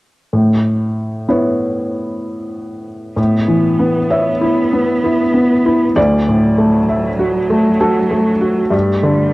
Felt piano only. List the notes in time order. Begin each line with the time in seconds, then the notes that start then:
0.33 A2
1.28 B3 E4 C#5
3.16 A2
3.48 E3
3.79 B3
4.10 C#5 E5
4.41 E4
4.73 B3
5.04 E4
5.34 B3
5.66 E4
5.96 D2 D5
6.28 A2
6.58 A3
6.89 E5
7.19 F#4
7.50 A3
7.80 F#4 A4
8.10 A3
8.41 F#4
8.70 G2
9.03 D3